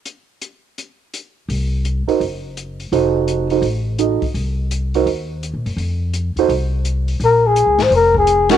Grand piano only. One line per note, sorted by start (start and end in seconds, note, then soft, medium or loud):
2.08 2.19 D#4 soft
2.08 2.20 F#4 soft
2.08 2.19 A#4 soft
2.08 2.20 C5 soft
2.92 3.47 D#4 soft
2.92 3.47 F#4 soft
2.92 3.47 A4 medium
2.92 3.47 C5 medium
3.51 3.63 D#4 soft
3.51 3.63 F#4 soft
3.51 3.63 A4 soft
3.51 3.63 C5 soft
3.99 4.20 D#4 soft
3.99 4.20 F#4 soft
3.99 4.20 A4 soft
3.99 4.20 D#5 soft
4.95 5.06 D#4 medium
4.95 5.06 F#4 soft
4.95 5.06 A#4 soft
4.95 5.06 C5 soft
6.39 6.49 D#4 medium
6.39 6.49 F#4 medium
6.39 6.49 A4 medium
6.39 6.49 C5 medium
8.50 8.57 C#4 medium
8.50 8.57 F4 medium
8.50 8.57 F#4 medium
8.50 8.57 A#4 medium